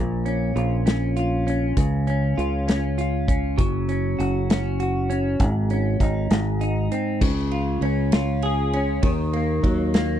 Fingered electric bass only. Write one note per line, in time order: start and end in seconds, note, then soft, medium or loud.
0.00 0.52 A#1 loud
0.56 1.73 A#1 medium
1.77 2.34 C#2 medium
2.38 3.55 C#2 medium
3.58 4.15 F#1 medium
4.19 5.36 F#1 medium
5.40 5.97 G#1 loud
6.00 6.29 G#1 medium
6.31 6.88 G#1 loud
7.22 7.79 C#2 loud
7.81 8.99 C#2 medium
9.03 9.60 D#2 loud
9.63 10.20 D#2 loud